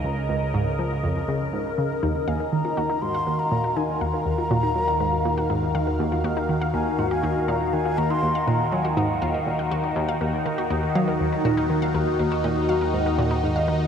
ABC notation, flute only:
X:1
M:4/4
L:1/16
Q:1/4=121
K:Ebm
V:1 name="Flute"
z16 | z2 a2 b4 =c'3 b3 a2 | b12- b2 z2 | z6 a2 g a3 b2 a2 |
b =c'3 b2 a2 g2 f4 z2 | z16 | z12 z2 e2 |]